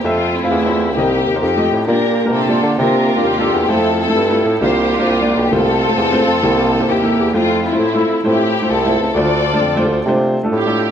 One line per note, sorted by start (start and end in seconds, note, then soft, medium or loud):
0.04 0.43 F2 medium
0.04 0.34 A3 medium
0.04 0.35 C4 medium
0.04 0.34 C4 medium
0.04 0.35 F4 medium
0.04 0.35 A4 medium
0.04 0.35 E5 medium
0.35 0.92 A3 medium
0.35 0.92 C4 medium
0.35 0.96 E4 medium
0.43 0.55 C4 medium
0.43 0.56 F4 medium
0.43 0.56 A4 medium
0.43 0.56 F5 medium
0.51 0.97 E2 medium
0.66 0.88 C4 medium
0.66 0.88 F4 medium
0.66 0.88 A4 medium
0.66 0.89 C5 medium
0.95 1.21 C2 medium
0.95 1.39 C3 medium
0.95 1.38 A#3 medium
0.95 1.26 C4 medium
0.95 1.38 D#4 medium
0.95 1.41 G4 medium
0.95 1.26 G4 medium
0.95 1.27 A#4 medium
0.95 1.27 D#5 medium
1.26 1.39 D#2 medium
1.34 1.42 C4 medium
1.34 1.42 G4 medium
1.34 1.42 A#4 medium
1.34 1.43 C5 medium
1.41 1.67 F2 medium
1.41 1.84 C4 medium
1.41 1.84 D#4 medium
1.41 1.84 G4 medium
1.56 1.79 A3 medium
1.56 1.79 F4 medium
1.56 1.80 G4 medium
1.56 1.80 D#5 medium
1.72 1.85 A2 medium
1.85 2.34 A#2 medium
1.85 2.59 A#2 medium
1.85 2.17 A#3 medium
1.85 2.31 D4 medium
1.85 2.17 F4 medium
1.85 2.73 G4 medium
1.85 2.17 G4 medium
1.85 2.29 A#4 loud
1.85 2.17 D5 medium
2.25 2.38 A#3 medium
2.25 2.38 F4 medium
2.25 2.38 G4 medium
2.25 2.38 A#4 medium
2.32 2.58 C3 medium
2.32 2.75 D4 medium
2.32 2.75 F4 medium
2.32 2.75 A4 medium
2.48 2.70 A#3 medium
2.48 2.71 F4 medium
2.48 2.71 G4 medium
2.48 2.71 D5 medium
2.62 2.76 D3 medium
2.78 3.17 C3 loud
2.78 3.50 C3 medium
2.78 3.08 A#3 medium
2.78 3.24 D4 medium
2.78 3.08 D4 medium
2.78 3.65 F4 medium
2.78 3.08 F4 medium
2.78 3.24 A#4 medium
2.78 3.08 C5 medium
3.16 3.28 A#3 medium
3.16 3.29 D4 medium
3.16 3.29 F4 medium
3.16 3.29 G4 medium
3.23 3.49 D#2 medium
3.23 3.66 A#3 medium
3.23 3.67 D4 medium
3.23 3.70 G4 medium
3.39 3.61 A#3 medium
3.39 3.61 D4 medium
3.39 3.62 F4 medium
3.39 3.62 A4 medium
3.53 3.67 E2 medium
3.68 4.07 F2 medium
3.68 3.99 A3 medium
3.68 3.98 C4 medium
3.68 3.98 E4 medium
3.68 3.99 E4 medium
3.68 3.99 F4 medium
3.68 3.99 A4 medium
3.68 3.99 C5 medium
3.99 4.56 C4 medium
3.99 4.56 E4 medium
3.99 4.57 A4 medium
4.07 4.20 A3 medium
4.07 4.20 E4 medium
4.07 4.20 F4 medium
4.07 4.20 A4 medium
4.15 4.40 G2 medium
4.29 4.52 A3 medium
4.29 4.52 E4 medium
4.29 4.52 F4 medium
4.29 4.53 A4 medium
4.45 4.58 A2 medium
4.61 4.99 C2 loud
4.61 5.32 C3 medium
4.61 4.90 A#3 medium
4.61 4.90 D4 medium
4.61 4.92 F4 medium
4.61 4.91 F4 medium
4.61 5.38 G4 medium
4.61 4.91 C5 medium
4.92 5.48 A#3 medium
4.92 5.48 D4 medium
4.92 5.37 F4 medium
4.98 5.11 A#3 medium
4.98 5.11 D4 medium
4.98 5.11 F4 medium
4.98 5.11 C5 medium
5.06 5.31 C2 medium
5.21 5.43 A#3 medium
5.21 5.44 D4 medium
5.21 5.44 F4 medium
5.21 5.44 D5 medium
5.36 5.49 B1 medium
5.36 5.53 G4 medium
5.51 5.90 C2 loud
5.51 6.23 C3 medium
5.51 5.81 A3 medium
5.51 6.84 C4 medium
5.51 5.81 C4 medium
5.51 6.84 F4 medium
5.51 5.81 F4 medium
5.51 6.89 A4 loud
5.51 5.81 C5 medium
5.89 6.02 A3 medium
5.89 6.02 C4 medium
5.89 6.02 F4 medium
5.89 6.02 C5 medium
5.97 6.22 E2 medium
6.12 6.34 A3 medium
6.12 6.34 C4 medium
6.12 6.35 F4 medium
6.12 6.35 C5 medium
6.27 6.40 F2 medium
6.42 6.82 C2 loud
6.42 7.14 C3 medium
6.42 6.71 A#3 medium
6.42 6.72 E4 medium
6.42 6.72 G4 medium
6.42 6.72 C5 medium
6.80 6.92 A#3 medium
6.80 6.93 E4 medium
6.80 6.93 G4 medium
6.80 6.93 C5 medium
6.88 7.13 D#2 medium
6.88 7.30 A#3 medium
6.88 7.30 E4 medium
6.88 7.34 G4 medium
7.03 7.25 A#3 medium
7.03 7.26 E4 medium
7.03 7.26 G4 medium
7.03 7.26 A4 medium
7.18 7.31 E2 medium
7.34 7.72 F2 medium
7.34 7.63 A3 medium
7.34 7.64 A3 medium
7.34 7.64 C4 medium
7.34 7.63 E4 medium
7.34 7.63 F4 medium
7.34 7.62 F4 medium
7.34 7.63 C5 medium
7.65 8.51 A3 medium
7.65 8.25 C4 medium
7.65 8.25 E4 medium
7.72 7.84 A3 medium
7.72 7.84 E4 medium
7.72 7.84 F4 medium
7.72 7.84 C5 medium
7.78 8.04 A2 medium
7.94 8.16 A3 medium
7.94 8.16 E4 medium
7.94 8.17 F4 medium
7.94 8.17 A4 medium
8.24 8.63 A2 medium
8.24 8.53 A3 medium
8.24 8.69 C4 medium
8.24 8.53 E4 medium
8.24 8.69 E4 medium
8.24 8.54 F4 medium
8.24 8.68 G4 medium
8.24 8.54 C5 medium
8.62 8.74 A3 medium
8.62 8.74 E4 medium
8.62 8.75 F4 medium
8.62 8.75 C5 medium
8.70 8.95 C2 medium
8.70 9.12 C4 medium
8.70 9.12 E4 medium
8.70 9.15 A4 medium
8.85 9.07 A3 medium
8.85 9.08 E4 medium
8.85 9.08 F4 medium
8.85 9.08 C5 medium
9.00 9.13 C#2 medium
9.14 9.53 D2 loud
9.14 9.87 D3 medium
9.14 9.45 A3 medium
9.14 9.45 D4 medium
9.14 10.02 F4 medium
9.14 9.45 F4 medium
9.14 10.02 A4 medium
9.14 9.45 C5 medium
9.14 10.07 D5 loud
9.53 9.65 A3 medium
9.53 9.66 D4 medium
9.53 9.66 F4 medium
9.53 9.66 C5 medium
9.60 9.91 F2 medium
9.76 9.98 A3 medium
9.76 9.98 D4 medium
9.76 9.98 F4 medium
9.76 9.99 C5 medium
9.90 10.03 D2 medium
10.05 10.44 C3 medium
10.05 10.36 A3 medium
10.05 10.36 D4 medium
10.05 10.36 F4 medium
10.05 10.36 C5 medium
10.43 10.56 A3 medium
10.43 10.56 D4 medium
10.43 10.56 F4 medium
10.43 10.56 A4 medium
10.52 10.90 A2 medium
10.52 10.91 C4 medium
10.52 10.91 G4 medium
10.66 10.88 A3 medium
10.66 10.89 D4 medium
10.66 10.88 F4 medium
10.66 10.89 A4 medium